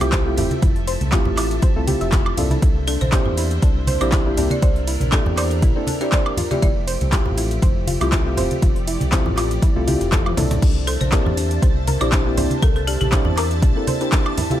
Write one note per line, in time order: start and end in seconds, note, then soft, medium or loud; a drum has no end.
0.00 0.39 C2 loud
0.00 2.58 F3 medium
0.00 2.58 A3 medium
0.00 0.23 A3 medium
0.00 0.23 C4 medium
0.00 0.23 E4 medium
0.00 0.23 F4 medium
0.00 0.23 G4 loud
0.00 8.33 E5 medium
0.00 0.35 G5 medium
0.00 closed hi-hat soft
0.00 closed hi-hat medium
0.00 high woodblock medium
0.12 0.18 C5 loud
0.12 kick loud
0.12 snare loud
0.12 clap loud
0.12 closed hi-hat medium
0.26 0.36 A3 medium
0.26 0.36 C4 medium
0.26 0.36 E4 medium
0.26 0.36 F4 medium
0.26 0.36 G4 medium
0.37 0.49 F1 medium
0.37 0.55 A3 medium
0.37 0.55 C4 medium
0.37 0.55 E4 medium
0.37 0.50 F4 medium
0.37 0.55 F4 medium
0.37 0.56 G4 loud
0.37 2.60 A5 medium
0.37 closed hi-hat medium
0.37 open hi-hat loud
0.37 ride medium
0.37 low conga medium
0.51 closed hi-hat medium
0.51 high conga medium
0.62 0.97 F1 loud
0.62 0.71 E4 medium
0.62 kick loud
0.62 closed hi-hat medium
0.76 closed hi-hat soft
0.87 0.93 C5 loud
0.87 closed hi-hat medium
0.87 open hi-hat loud
0.87 ride medium
1.01 1.21 C2 medium
1.01 closed hi-hat medium
1.01 high conga medium
1.12 1.72 A3 medium
1.12 1.73 C4 medium
1.12 1.73 E4 medium
1.12 1.25 F4 medium
1.12 1.73 F4 medium
1.12 1.73 G4 loud
1.12 kick loud
1.12 snare loud
1.12 clap loud
1.12 closed hi-hat medium
1.25 1.59 A1 loud
1.25 low conga medium
1.37 1.46 E4 medium
1.37 clap soft
1.37 open hi-hat medium
1.37 open hi-hat loud
1.37 ride medium
1.37 high woodblock medium
1.51 closed hi-hat medium
1.62 1.68 C5 loud
1.62 kick loud
1.62 closed hi-hat medium
1.76 1.96 C2 medium
1.76 1.85 A3 medium
1.76 1.85 C4 medium
1.76 1.85 E4 medium
1.76 1.85 F4 medium
1.76 1.85 A4 medium
1.87 2.35 A3 medium
1.87 2.35 C4 medium
1.87 2.35 E4 medium
1.87 2.35 F4 medium
1.87 1.96 G4 medium
1.87 2.35 G4 loud
1.87 closed hi-hat medium
1.87 open hi-hat loud
1.87 ride medium
1.87 high conga medium
2.01 2.34 F1 medium
2.01 2.08 E5 medium
2.01 snare soft
2.01 closed hi-hat medium
2.12 2.18 G4 medium
2.12 kick loud
2.12 snare loud
2.12 clap loud
2.12 closed hi-hat medium
2.26 high woodblock medium
2.37 2.59 C2 medium
2.37 3.09 A#3 medium
2.37 3.10 C4 medium
2.37 3.10 D4 medium
2.37 3.10 E4 medium
2.37 2.46 F4 medium
2.37 3.10 A4 medium
2.37 closed hi-hat medium
2.37 open hi-hat loud
2.37 ride medium
2.37 low conga medium
2.50 2.55 E4 medium
2.50 snare soft
2.50 closed hi-hat soft
2.50 high conga medium
2.62 2.97 C2 loud
2.62 6.34 A#3 medium
2.62 6.34 D4 medium
2.62 2.75 E4 medium
2.62 4.60 C5 medium
2.62 kick loud
2.62 closed hi-hat medium
2.87 2.96 D4 medium
2.87 2.98 A4 medium
2.87 closed hi-hat medium
2.87 open hi-hat loud
2.87 ride medium
3.01 3.21 A#1 medium
3.01 3.71 C5 medium
3.01 closed hi-hat medium
3.01 high conga medium
3.12 3.97 A#3 medium
3.12 3.98 C4 medium
3.12 3.98 D4 medium
3.12 3.98 E4 medium
3.12 3.98 G4 medium
3.12 3.18 C5 loud
3.12 kick loud
3.12 snare loud
3.12 clap loud
3.12 closed hi-hat medium
3.25 3.59 E2 medium
3.25 low conga medium
3.37 3.50 E4 medium
3.37 closed hi-hat medium
3.37 open hi-hat loud
3.37 ride medium
3.51 closed hi-hat soft
3.51 closed hi-hat medium
3.62 3.97 C2 loud
3.62 3.71 D4 medium
3.62 kick loud
3.62 closed hi-hat medium
3.87 3.93 C5 loud
3.87 closed hi-hat medium
3.87 open hi-hat loud
3.87 ride medium
3.87 high conga loud
4.00 4.39 A#1 loud
4.00 4.23 A#3 medium
4.00 4.23 C4 medium
4.00 4.23 D4 medium
4.00 4.23 E4 medium
4.00 4.23 G4 loud
4.00 4.13 C5 medium
4.00 closed hi-hat soft
4.00 closed hi-hat medium
4.00 high woodblock medium
4.12 4.25 E4 medium
4.12 kick loud
4.12 snare loud
4.12 clap loud
4.12 closed hi-hat medium
4.26 4.36 A#3 medium
4.26 4.36 C4 medium
4.26 4.36 D4 medium
4.26 4.36 E4 medium
4.26 4.36 G4 medium
4.37 4.49 C2 medium
4.37 4.55 A#3 medium
4.37 4.55 C4 medium
4.37 4.46 D4 medium
4.37 4.55 D4 medium
4.37 4.55 E4 medium
4.37 4.56 G4 loud
4.37 closed hi-hat medium
4.37 open hi-hat loud
4.37 ride medium
4.37 low conga medium
4.50 4.58 D5 medium
4.50 closed hi-hat medium
4.50 high conga medium
4.62 4.97 C2 loud
4.62 6.36 A#4 medium
4.62 4.68 C5 loud
4.62 4.71 D5 medium
4.62 kick loud
4.62 closed hi-hat medium
4.76 closed hi-hat soft
4.87 5.00 E4 medium
4.87 closed hi-hat medium
4.87 open hi-hat loud
4.87 ride medium
5.00 5.21 A#1 medium
5.00 closed hi-hat medium
5.00 high conga medium
5.12 5.72 A#3 medium
5.12 5.73 C4 medium
5.12 5.21 D4 medium
5.12 5.73 D4 medium
5.12 5.73 E4 medium
5.12 5.73 G4 loud
5.12 5.26 A4 medium
5.12 kick loud
5.12 snare loud
5.12 clap loud
5.12 closed hi-hat medium
5.26 5.64 E2 loud
5.26 low conga medium
5.37 5.43 C5 loud
5.37 5.51 D5 medium
5.37 clap soft
5.37 open hi-hat medium
5.37 open hi-hat loud
5.37 ride medium
5.37 high woodblock medium
5.51 closed hi-hat medium
5.62 5.74 A#1 loud
5.62 5.75 E4 medium
5.62 kick loud
5.62 closed hi-hat medium
5.76 5.98 A#3 medium
5.76 5.98 C4 medium
5.76 5.98 D4 medium
5.76 5.98 E4 medium
5.76 5.98 A4 medium
5.87 5.96 D4 medium
5.87 closed hi-hat medium
5.87 open hi-hat loud
5.87 ride medium
5.87 high conga medium
6.01 6.36 A#3 medium
6.01 6.36 C4 medium
6.01 6.36 D4 medium
6.01 6.36 E4 medium
6.01 6.36 G4 loud
6.01 6.08 D5 medium
6.01 snare soft
6.01 closed hi-hat medium
6.12 6.18 C5 loud
6.12 6.21 D5 medium
6.12 kick loud
6.12 snare loud
6.12 clap loud
6.12 closed hi-hat medium
6.26 high woodblock medium
6.37 10.58 F3 medium
6.37 10.58 A3 medium
6.37 6.50 F4 medium
6.37 10.58 G4 medium
6.37 closed hi-hat medium
6.37 open hi-hat loud
6.37 ride medium
6.37 low conga medium
6.51 6.67 A3 medium
6.51 6.67 C4 medium
6.51 6.68 E4 medium
6.51 6.68 F4 medium
6.51 6.68 G4 medium
6.51 6.58 D5 medium
6.51 snare soft
6.51 closed hi-hat medium
6.51 high conga medium
6.62 6.97 F1 loud
6.62 6.71 E4 medium
6.62 6.71 D5 medium
6.62 kick loud
6.62 closed hi-hat medium
6.87 6.93 C5 loud
6.87 closed hi-hat medium
6.87 open hi-hat loud
6.87 ride medium
7.01 7.21 C2 medium
7.01 closed hi-hat medium
7.01 high conga medium
7.12 7.97 A3 medium
7.12 7.98 C4 medium
7.12 7.98 E4 medium
7.12 7.25 F4 medium
7.12 7.98 F4 medium
7.12 7.98 G4 medium
7.12 kick loud
7.12 snare loud
7.12 clap loud
7.12 closed hi-hat medium
7.26 7.59 A1 loud
7.26 low conga medium
7.37 7.46 E4 medium
7.37 closed hi-hat medium
7.37 open hi-hat loud
7.37 ride medium
7.51 closed hi-hat soft
7.51 closed hi-hat medium
7.62 7.97 F1 loud
7.62 7.68 C5 loud
7.62 kick loud
7.62 closed hi-hat medium
7.87 8.00 F4 medium
7.87 closed hi-hat medium
7.87 open hi-hat loud
7.87 ride medium
7.87 high conga medium
8.01 8.39 C2 loud
8.01 8.23 A3 medium
8.01 8.23 C4 medium
8.01 8.23 E4 medium
8.01 8.23 F4 medium
8.01 8.23 G4 loud
8.01 closed hi-hat soft
8.01 closed hi-hat medium
8.01 high woodblock medium
8.12 8.21 E4 medium
8.12 kick loud
8.12 snare loud
8.12 clap loud
8.12 closed hi-hat medium
8.26 8.36 A3 medium
8.26 8.36 C4 medium
8.26 8.36 E4 medium
8.26 8.36 F4 medium
8.26 8.36 G4 medium
8.37 8.49 F1 medium
8.37 8.55 A3 medium
8.37 8.55 C4 medium
8.37 8.55 E4 medium
8.37 8.55 F4 medium
8.37 8.56 G4 loud
8.37 8.43 C5 loud
8.37 10.60 D5 medium
8.37 closed hi-hat medium
8.37 open hi-hat loud
8.37 ride medium
8.37 low conga medium
8.51 closed hi-hat medium
8.51 high conga medium
8.62 8.97 F1 loud
8.62 8.75 F4 medium
8.62 kick loud
8.62 closed hi-hat medium
8.76 closed hi-hat soft
8.87 8.96 E4 medium
8.87 closed hi-hat medium
8.87 open hi-hat loud
8.87 ride medium
9.01 9.21 C2 medium
9.01 closed hi-hat medium
9.01 high conga medium
9.11 9.72 A3 medium
9.11 9.72 C4 medium
9.11 9.73 E4 medium
9.11 9.73 F4 medium
9.11 9.73 G4 loud
9.11 9.18 C5 loud
9.11 kick loud
9.11 snare loud
9.11 clap loud
9.11 closed hi-hat medium
9.26 9.59 A1 medium
9.26 low conga medium
9.37 9.50 F4 medium
9.37 clap soft
9.37 open hi-hat loud
9.37 ride medium
9.37 high woodblock medium
9.51 closed hi-hat medium
9.62 9.71 E4 medium
9.62 kick loud
9.62 closed hi-hat medium
9.75 9.96 C2 loud
9.75 9.85 A3 medium
9.75 9.85 C4 medium
9.75 9.85 E4 medium
9.75 9.85 F4 medium
9.75 9.85 A4 medium
9.87 10.34 A3 medium
9.87 10.35 C4 medium
9.87 10.35 E4 medium
9.87 10.00 E4 medium
9.87 10.35 F4 medium
9.87 10.35 G4 loud
9.87 closed hi-hat medium
9.87 open hi-hat loud
9.87 ride medium
9.87 high conga medium
10.01 10.34 F1 medium
10.01 snare soft
10.01 closed hi-hat medium
10.12 10.25 A4 loud
10.12 kick loud
10.12 snare loud
10.12 clap loud
10.12 closed hi-hat medium
10.12 high tom medium
10.26 10.33 F4 medium
10.26 high tom medium
10.26 high woodblock medium
10.36 10.59 C2 medium
10.36 11.09 A#3 medium
10.36 11.09 C4 medium
10.36 11.10 D4 medium
10.36 10.46 E4 medium
10.36 11.10 E4 medium
10.36 11.10 A4 medium
10.36 snare loud
10.36 closed hi-hat medium
10.36 open hi-hat loud
10.36 mid tom medium
10.36 ride medium
10.36 low conga medium
10.51 snare loud
10.51 closed hi-hat medium
10.51 mid tom medium
10.51 high conga medium
10.62 10.97 C2 loud
10.62 14.34 A#3 medium
10.62 14.34 D4 medium
10.62 10.71 D4 medium
10.62 14.34 C5 medium
10.62 14.60 E5 medium
10.62 14.60 A5 medium
10.62 14.60 A6 medium
10.62 kick loud
10.62 closed hi-hat medium
10.62 crash medium
10.87 10.98 A4 medium
10.87 10.93 C5 loud
10.87 closed hi-hat medium
10.87 open hi-hat loud
10.87 ride medium
11.01 11.21 A#1 medium
11.01 11.70 C5 medium
11.01 closed hi-hat medium
11.01 high conga medium
11.12 11.97 A#3 medium
11.12 11.97 C4 medium
11.12 11.98 D4 medium
11.12 11.98 E4 medium
11.12 11.98 G4 medium
11.12 11.25 A#4 loud
11.12 kick loud
11.12 snare loud
11.12 clap loud
11.12 closed hi-hat medium
11.26 11.59 E2 loud
11.26 low conga medium
11.37 11.46 D4 medium
11.37 closed hi-hat medium
11.37 open hi-hat loud
11.37 ride medium
11.51 closed hi-hat soft
11.51 closed hi-hat medium
11.62 11.97 C2 loud
11.62 11.68 C5 loud
11.62 kick loud
11.62 closed hi-hat medium
11.87 12.00 A#4 loud
11.87 closed hi-hat medium
11.87 open hi-hat loud
11.87 ride medium
11.87 high conga medium
12.00 12.39 A#1 loud
12.00 12.22 A#3 medium
12.00 12.23 C4 medium
12.00 12.23 D4 medium
12.00 12.23 E4 medium
12.00 12.23 G4 loud
12.00 12.13 C5 medium
12.00 closed hi-hat soft
12.00 closed hi-hat medium
12.00 high woodblock medium
12.12 12.21 D4 medium
12.12 kick loud
12.12 snare loud
12.12 clap loud
12.12 closed hi-hat medium
12.25 12.35 A#3 medium
12.25 12.36 C4 medium
12.25 12.36 D4 medium
12.25 12.36 E4 medium
12.25 12.36 G4 medium
12.37 12.49 C2 medium
12.37 12.55 A#3 medium
12.37 12.55 C4 medium
12.37 12.55 D4 medium
12.37 12.55 E4 medium
12.37 12.55 G4 loud
12.37 12.43 C5 loud
12.37 closed hi-hat medium
12.37 open hi-hat loud
12.37 ride medium
12.37 low conga medium
12.50 closed hi-hat medium
12.50 high conga medium
12.62 12.97 C2 loud
12.62 12.71 A4 medium
12.62 12.75 A#4 loud
12.62 kick loud
12.62 closed hi-hat medium
12.76 12.83 A4 medium
12.76 closed hi-hat soft
12.87 12.96 D4 medium
12.87 12.98 G4 medium
12.87 closed hi-hat medium
12.87 open hi-hat loud
12.87 ride medium
13.01 13.21 A#1 medium
13.01 13.08 G4 medium
13.01 closed hi-hat medium
13.01 high conga medium
13.11 13.72 A#3 medium
13.11 13.72 C4 medium
13.11 13.73 D4 medium
13.11 13.73 E4 medium
13.11 13.21 G4 medium
13.11 13.73 G4 loud
13.11 13.18 C5 loud
13.11 kick loud
13.11 snare loud
13.11 clap loud
13.11 closed hi-hat medium
13.25 13.64 E2 loud
13.25 low conga medium
13.37 13.50 A#4 loud
13.37 clap soft
13.37 open hi-hat medium
13.37 open hi-hat loud
13.37 ride medium
13.37 high woodblock medium
13.51 closed hi-hat medium
13.62 13.74 A#1 loud
13.62 13.71 D4 medium
13.62 kick loud
13.62 closed hi-hat medium
13.75 13.97 A#3 medium
13.75 13.98 C4 medium
13.75 13.98 D4 medium
13.75 13.98 E4 medium
13.75 13.98 A4 medium
13.87 13.93 C5 loud
13.87 closed hi-hat medium
13.87 open hi-hat loud
13.87 ride medium
13.87 high conga loud
14.00 14.36 A#3 medium
14.00 14.36 C4 medium
14.00 14.36 D4 medium
14.00 14.36 E4 medium
14.00 14.36 G4 loud
14.00 snare soft
14.00 closed hi-hat medium
14.12 14.25 A#4 loud
14.12 kick loud
14.12 snare loud
14.12 clap loud
14.12 closed hi-hat medium
14.26 high woodblock medium
14.37 14.60 F3 medium
14.37 14.60 G3 medium
14.37 14.46 E4 medium
14.37 14.60 A4 medium
14.37 closed hi-hat medium
14.37 open hi-hat loud
14.37 ride medium
14.37 low conga medium
14.50 14.60 A3 medium
14.50 14.60 C4 medium
14.50 14.60 E4 medium
14.50 14.60 F4 medium
14.50 14.60 G4 medium
14.50 snare soft
14.50 closed hi-hat medium
14.50 high conga medium